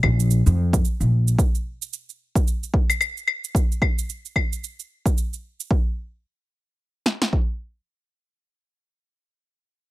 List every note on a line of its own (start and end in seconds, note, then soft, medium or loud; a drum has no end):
0.03 0.39 A#1 medium
0.03 kick soft
0.03 claves medium
0.20 shaker medium
0.31 shaker soft
0.46 0.79 F2 medium
0.46 shaker soft
0.73 kick loud
0.73 shaker medium
0.85 shaker medium
1.00 1.33 A#1 medium
1.00 shaker soft
1.28 shaker medium
1.39 kick loud
1.39 shaker soft
1.55 shaker soft
1.82 shaker medium
1.93 shaker medium
2.09 shaker soft
2.35 kick medium
2.35 shaker medium
2.47 shaker soft
2.63 shaker soft
2.74 kick medium
2.90 claves medium
2.90 shaker medium
3.01 claves medium
3.01 shaker soft
3.17 shaker soft
3.28 claves medium
3.44 shaker medium
3.55 kick loud
3.55 shaker medium
3.72 shaker soft
3.82 kick medium
3.82 claves medium
3.98 shaker medium
4.10 shaker soft
4.25 shaker soft
4.36 kick soft
4.36 claves medium
4.53 shaker medium
4.64 shaker soft
4.80 shaker soft
5.06 kick medium
5.06 shaker medium
5.18 shaker soft
5.33 shaker soft
5.60 shaker medium
5.71 kick medium
7.06 snare medium
7.22 snare medium
7.33 kick medium